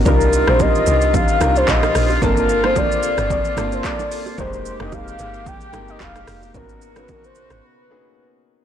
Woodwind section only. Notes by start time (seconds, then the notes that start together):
0.06 D#3 C4 F4
2.22 C3 A#3
4.39 D#3 G#3 G4
6.55 B2 C#3 F#4